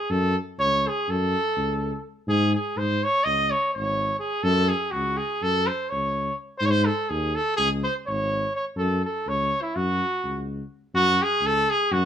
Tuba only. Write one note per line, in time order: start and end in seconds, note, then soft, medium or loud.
0.10 0.37 F#2 loud
0.59 0.86 C#2 medium
1.09 1.36 F#2 medium
1.57 1.95 C#2 medium
2.27 2.54 G#2 loud
2.76 3.03 G#2 medium
3.26 3.52 C#2 medium
3.76 4.14 G#1 medium
4.44 4.71 F#2 loud
4.93 5.20 C#2 medium
5.42 5.69 F#2 medium
5.92 6.30 C#2 medium
6.61 6.88 G#2 loud
7.10 7.37 D#2 medium
7.58 7.85 C#2 medium
8.08 8.46 G#1 medium
8.77 9.04 F#2 loud
9.27 9.54 C#2 medium
9.76 10.02 F#2 medium
10.24 10.62 C#2 medium
10.94 11.20 F#2 loud
11.41 11.68 C#2 medium
11.91 12.05 F#2 loud